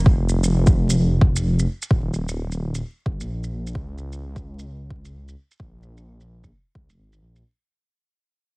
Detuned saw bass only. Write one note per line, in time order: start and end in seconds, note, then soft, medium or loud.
0.06 0.97 F1 loud
0.99 1.66 F1 medium
1.91 2.82 D#1 loud
3.06 3.19 G1 medium
3.20 3.74 A#1 medium
3.75 4.66 C#2 medium
4.67 5.35 C#2 medium
5.60 6.51 A#1 loud
6.75 6.89 C#2 medium
6.90 6.98 F1 medium
6.98 7.20 G#1 medium
7.21 7.43 A#1 medium